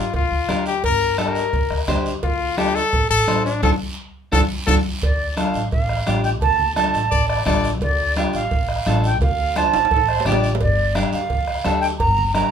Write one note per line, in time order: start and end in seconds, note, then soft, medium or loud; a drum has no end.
0.00 0.15 F4 medium
0.14 0.28 D2 medium
0.14 0.63 F4 medium
0.14 bombo low medium
0.14 cowbell medium
0.14 high conga soft
0.14 long guiro medium
0.31 0.45 D2 medium
0.49 0.85 D2 medium
0.49 0.73 D4 medium
0.49 0.73 G4 medium
0.49 0.74 A#4 medium
0.49 bombo rim medium
0.49 cowbell medium
0.49 high conga medium
0.49 low timbale medium
0.49 short guiro medium
0.66 0.83 G4 loud
0.66 short guiro medium
0.84 1.39 G1 medium
0.84 1.17 A#4 loud
0.84 bombo low medium
0.84 cowbell loud
0.84 high conga soft
0.84 long guiro medium
1.18 1.43 D4 medium
1.18 1.43 G4 medium
1.18 1.43 A4 medium
1.18 1.85 A#4 medium
1.18 bombo rim medium
1.18 cowbell medium
1.18 high conga medium
1.18 short guiro medium
1.35 short guiro medium
1.53 1.67 D2 medium
1.53 bombo low medium
1.53 cowbell medium
1.53 high conga soft
1.53 long guiro medium
1.70 1.85 D2 medium
1.70 bombo rim medium
1.88 2.16 D2 medium
1.88 2.13 D4 medium
1.88 2.13 G4 medium
1.88 2.13 C5 medium
1.88 bombo low medium
1.88 bombo rim medium
1.88 cowbell medium
1.88 high conga medium
1.88 low conga medium
1.88 low timbale medium
1.88 short guiro medium
2.06 short guiro medium
2.23 2.79 D2 medium
2.23 2.59 F4 medium
2.23 bombo low medium
2.23 cowbell loud
2.23 high conga soft
2.23 long guiro medium
2.57 2.82 D4 medium
2.57 2.82 F4 medium
2.57 2.77 G4 loud
2.57 2.83 A4 medium
2.57 bombo rim medium
2.57 cowbell medium
2.57 high conga medium
2.57 short guiro medium
2.75 3.10 A4 loud
2.75 short guiro medium
2.93 3.07 A1 medium
2.93 bombo low medium
2.93 cowbell medium
2.93 high conga soft
2.93 long guiro medium
3.10 3.24 A1 medium
3.10 3.43 A4 loud
3.27 3.62 A1 medium
3.27 3.52 D4 medium
3.27 3.52 F4 medium
3.27 3.52 C5 medium
3.27 bombo rim medium
3.27 cowbell medium
3.27 high conga medium
3.27 low timbale medium
3.27 short guiro medium
3.45 3.62 D4 medium
3.45 short guiro medium
3.63 3.76 D2 medium
3.63 3.74 D4 medium
3.63 3.74 F4 medium
3.63 3.71 A4 medium
3.63 3.74 A4 medium
3.63 bombo low medium
3.63 high conga medium
3.63 high timbale loud
3.63 long guiro medium
4.32 4.46 D2 medium
4.32 4.44 D4 loud
4.32 4.44 F4 medium
4.32 4.41 A4 medium
4.32 4.44 A4 medium
4.32 bombo low medium
4.32 high conga loud
4.32 high timbale loud
4.32 long guiro medium
4.67 4.81 D2 medium
4.67 4.79 D4 loud
4.67 4.79 F4 medium
4.67 4.75 A4 medium
4.67 4.78 A4 medium
4.67 bombo low medium
4.67 high conga medium
4.67 high timbale medium
4.67 long guiro medium
5.02 5.44 D2 medium
5.02 5.35 D5 medium
5.02 bombo low medium
5.02 cowbell loud
5.02 high conga soft
5.02 long guiro medium
5.37 5.61 D4 medium
5.37 5.62 F4 medium
5.37 5.62 A4 medium
5.37 5.70 F5 medium
5.37 bombo rim medium
5.37 cowbell medium
5.37 high conga medium
5.37 short guiro medium
5.54 5.69 A1 medium
5.54 short guiro medium
5.71 6.00 A1 medium
5.71 6.21 F5 medium
5.71 bombo low medium
5.71 cowbell medium
5.71 high conga soft
5.71 long guiro medium
5.89 bombo rim medium
6.07 6.42 A1 medium
6.07 6.31 D4 medium
6.07 6.31 F4 medium
6.07 6.32 G4 medium
6.07 bombo rim medium
6.07 cowbell medium
6.07 high conga medium
6.07 low timbale medium
6.07 short guiro medium
6.24 6.30 G5 medium
6.24 short guiro medium
6.41 6.84 D2 medium
6.41 6.74 A5 loud
6.41 bombo low medium
6.41 cowbell loud
6.41 high conga soft
6.41 long guiro medium
6.60 low conga medium
6.75 7.01 D4 medium
6.75 7.01 F4 medium
6.75 7.01 A4 medium
6.75 7.42 A5 medium
6.75 bombo rim medium
6.75 cowbell medium
6.75 high conga medium
6.75 short guiro medium
6.94 7.08 A1 medium
6.94 short guiro medium
7.11 7.40 A1 medium
7.11 7.27 D5 loud
7.11 bombo low medium
7.11 cowbell medium
7.11 high conga soft
7.11 long guiro medium
7.28 7.45 D5 medium
7.28 bombo rim medium
7.46 7.82 A1 medium
7.46 7.71 D4 medium
7.46 7.71 F4 medium
7.46 7.71 A4 medium
7.46 7.71 D5 loud
7.46 bombo low medium
7.46 bombo rim medium
7.46 cowbell medium
7.46 high conga medium
7.46 low conga medium
7.46 low timbale medium
7.46 short guiro medium
7.64 short guiro medium
7.81 8.23 D2 medium
7.81 8.14 D5 medium
7.81 bombo low medium
7.81 cowbell loud
7.81 high conga soft
7.81 long guiro medium
8.16 8.41 D4 medium
8.16 8.42 F4 medium
8.16 8.42 G4 medium
8.16 8.23 F5 medium
8.16 bombo rim medium
8.16 cowbell medium
8.16 high conga medium
8.16 short guiro medium
8.33 8.48 A1 medium
8.33 9.00 F5 medium
8.33 short guiro medium
8.51 8.79 A1 medium
8.51 bombo low medium
8.51 cowbell medium
8.51 high conga soft
8.51 long guiro medium
8.69 bombo rim medium
8.86 9.21 A1 loud
8.86 9.11 D4 medium
8.86 9.11 F4 medium
8.86 9.11 A4 medium
8.86 bombo rim medium
8.86 cowbell medium
8.86 high conga medium
8.86 short guiro medium
9.04 9.20 G5 medium
9.04 short guiro medium
9.21 9.63 D2 medium
9.21 9.58 F5 loud
9.21 bombo low medium
9.21 cowbell loud
9.21 high conga soft
9.21 long guiro medium
9.56 9.81 D4 medium
9.56 9.81 F4 medium
9.56 9.81 C5 medium
9.56 10.26 A5 medium
9.56 bombo rim medium
9.56 cowbell medium
9.56 high conga medium
9.56 short guiro medium
9.73 9.88 A1 medium
9.73 high timbale loud
9.73 short guiro medium
9.85 high timbale medium
9.91 10.19 A1 medium
9.91 10.07 A4 medium
9.91 bombo low medium
9.91 cowbell medium
9.91 high conga soft
9.91 long guiro medium
9.97 high timbale medium
10.08 10.27 C5 medium
10.08 bombo rim medium
10.20 low timbale medium
10.25 10.62 A1 loud
10.25 10.50 D4 medium
10.25 10.51 F4 medium
10.25 10.51 G4 medium
10.25 10.52 D5 medium
10.25 bombo rim medium
10.25 cowbell medium
10.25 high conga medium
10.25 low conga medium
10.25 short guiro medium
10.32 low timbale loud
10.44 short guiro medium
10.55 low timbale loud
10.60 11.02 G1 medium
10.60 10.96 D5 medium
10.60 bombo low medium
10.60 cowbell loud
10.60 high conga soft
10.60 long guiro medium
10.95 11.20 D4 medium
10.95 11.20 G4 medium
10.95 11.20 A#4 medium
10.95 11.12 F5 medium
10.95 bombo rim medium
10.95 cowbell medium
10.95 high conga medium
10.95 short guiro medium
11.12 11.27 D2 medium
11.12 11.78 F5 medium
11.12 short guiro medium
11.30 11.58 D2 medium
11.30 bombo low medium
11.30 cowbell medium
11.30 high conga soft
11.30 long guiro medium
11.47 bombo rim medium
11.64 12.01 D2 loud
11.64 11.90 D4 medium
11.64 11.90 G4 medium
11.64 11.90 A4 loud
11.64 bombo rim medium
11.64 cowbell medium
11.64 high conga medium
11.64 low timbale medium
11.64 short guiro medium
11.81 11.87 G5 loud
11.81 short guiro medium
11.99 12.42 G1 medium
11.99 12.32 A#5 loud
11.99 bombo low medium
11.99 cowbell loud
11.99 long guiro medium
12.18 low conga medium
12.34 12.51 D4 medium
12.34 12.51 G4 medium
12.34 12.51 A#4 medium
12.34 12.51 A#5 medium
12.34 bombo rim medium
12.34 cowbell medium
12.34 high conga medium
12.34 short guiro medium